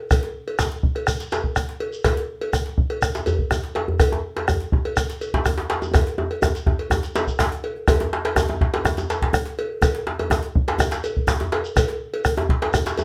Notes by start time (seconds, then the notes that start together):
0.11 bombo rim, bombo low, cowbell, djembe tone, djembe bass, shekere
0.23 djembe slap
0.48 cowbell
0.59 bombo rim, djembe slap, djembe tone, djembe bass, shekere
0.72 djembe slap
0.83 bombo low
0.95 bombo rim, cowbell
1.07 bombo rim, djembe tone, djembe bass, shekere
1.20 djembe slap, shekere
1.32 cowbell, djembe slap, shekere
1.44 bombo low
1.56 bombo rim, djembe tone, djembe bass, shekere
1.69 djembe slap
1.80 cowbell, djembe slap
1.93 shekere
2.04 bombo rim, bombo low, cowbell, djembe slap, djembe tone, djembe bass, shekere
2.17 djembe slap
2.41 cowbell
2.53 bombo rim, djembe tone, djembe bass, shekere
2.66 djembe slap
2.78 bombo low
2.90 bombo rim, cowbell
3.02 bombo rim, djembe tone, djembe bass, shekere
3.14 djembe slap, shekere
3.26 cowbell, djembe bass, shekere
3.39 bombo low
3.51 bombo rim, djembe tone, djembe bass, shekere
3.63 djembe slap
3.75 cowbell, djembe slap
3.88 djembe bass
4.00 bombo rim, bombo low, cowbell, djembe tone, djembe bass, shekere
4.12 djembe slap, djembe tone
4.37 cowbell, djembe slap
4.48 bombo rim, djembe tone, djembe bass, shekere
4.60 djembe slap
4.72 bombo low, djembe tone
4.85 bombo rim, cowbell
4.97 bombo rim, djembe tone, djembe bass, shekere
5.09 djembe slap, shekere
5.21 cowbell, shekere
5.34 bombo low, djembe slap
5.45 bombo rim, djembe tone, djembe bass, shekere
5.58 djembe slap
5.70 cowbell, djembe slap
5.82 djembe tone, shekere
5.94 bombo rim, bombo low, cowbell, djembe tone, djembe bass, shekere
6.07 djembe slap
6.18 djembe tone
6.31 bombo rim, cowbell, djembe slap
6.42 bombo rim, djembe slap, djembe tone, djembe bass, shekere
6.55 djembe slap, shekere
6.66 bombo rim, bombo low, djembe slap, djembe tone
6.79 cowbell, djembe slap
6.90 bombo rim, djembe tone, djembe bass, shekere
7.03 bombo rim, djembe slap, shekere
7.15 cowbell, djembe slap, shekere
7.27 bombo rim, bombo low, djembe slap, shekere
7.39 bombo rim, djembe slap, djembe tone, djembe bass, shekere
7.51 bombo rim, djembe slap
7.63 bombo rim, cowbell, djembe slap
7.76 djembe slap
7.88 bombo rim, bombo low, cowbell, djembe tone, djembe bass, shekere
8.00 djembe slap, djembe tone
8.13 djembe slap
8.25 cowbell, djembe slap
8.36 bombo rim, djembe tone, djembe bass, shekere
8.49 djembe slap, djembe tone
8.61 bombo low, djembe slap
8.74 bombo rim, cowbell, djembe slap
8.85 bombo rim, djembe tone, djembe bass, shekere
8.97 djembe slap, djembe tone, shekere
9.10 cowbell, djembe slap, shekere
9.22 bombo low, djembe slap
9.33 bombo rim, djembe tone, djembe bass, shekere
9.46 djembe slap
9.58 cowbell, djembe slap
9.82 bombo rim, bombo low, cowbell, djembe tone, djembe bass, shekere
9.95 djembe slap
10.07 djembe slap
10.19 cowbell, djembe tone
10.30 bombo rim, djembe slap, djembe tone, djembe bass, shekere
10.43 djembe slap
10.55 bombo low
10.68 bombo rim, cowbell, djembe slap
10.79 bombo rim, djembe tone, djembe bass, shekere
10.91 djembe slap, shekere
11.04 cowbell, shekere
11.17 bombo low
11.27 bombo rim, djembe slap, djembe tone, djembe bass, shekere
11.40 djembe slap, djembe tone
11.52 cowbell, djembe slap
11.65 shekere
11.76 bombo rim, bombo low, cowbell, djembe tone, djembe bass, shekere
11.88 djembe slap
12.14 cowbell
12.25 bombo rim, djembe tone, djembe bass, shekere
12.37 djembe slap, djembe tone
12.49 bombo low, djembe slap
12.62 bombo rim, cowbell, djembe slap
12.74 bombo rim, djembe tone, djembe bass, shekere
12.86 djembe slap, shekere
12.97 cowbell, djembe tone, shekere